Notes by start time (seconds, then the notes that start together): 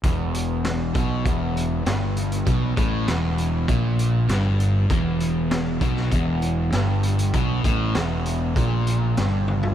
0.04 E1 E2, kick, closed hi-hat
0.34 closed hi-hat
0.64 snare, closed hi-hat
0.94 B1 B2, kick, closed hi-hat
1.25 E1 E2, kick, closed hi-hat
1.57 closed hi-hat
1.86 G1 G2, snare, closed hi-hat
2.17 closed hi-hat
2.32 closed hi-hat
2.47 B1 B2, kick, closed hi-hat
2.77 A1 A2, kick, closed hi-hat
3.08 E1 E2, snare, closed hi-hat
3.38 closed hi-hat
3.68 A#1 A#2, kick, closed hi-hat
3.99 closed hi-hat
4.29 G1 G2, snare, closed hi-hat
4.60 closed hi-hat
4.90 E1 E2, kick, closed hi-hat
5.20 closed hi-hat
5.51 snare, closed hi-hat
5.81 B1 B2, kick, closed hi-hat
5.96 snare
6.12 E1 E2, kick, closed hi-hat
6.42 closed hi-hat
6.72 G1 G2, snare, closed hi-hat
7.03 closed hi-hat
7.19 closed hi-hat
7.34 B1 B2, kick, closed hi-hat
7.64 A1 A2, kick, closed hi-hat
7.95 E1 E2, snare, closed hi-hat
8.26 closed hi-hat
8.56 A#1 A#2, kick, closed hi-hat
8.87 closed hi-hat
9.17 G1 G2, snare, closed hi-hat
9.48 high tom
9.63 floor tom